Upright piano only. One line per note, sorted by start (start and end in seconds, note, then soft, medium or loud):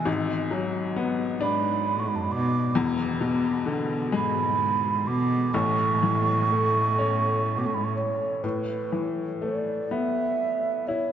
0.05 2.71 G#1 medium
0.05 2.71 G#2 medium
0.51 2.26 F#3 medium
0.96 2.72 B3 soft
1.41 2.72 D4 medium
2.75 5.49 E1 medium
2.75 5.49 E2 medium
3.21 5.02 B2 medium
3.66 5.49 D3 medium
4.12 5.49 G#3 medium
5.54 8.40 A1 medium
5.54 8.40 A2 medium
6.03 7.92 E3 medium
6.51 8.40 A3 soft
6.98 8.40 C#4 medium
8.44 11.12 A2 soft
8.92 10.84 E3 soft
9.42 11.12 A3 soft
9.91 11.12 B3 soft
10.88 11.12 E4 soft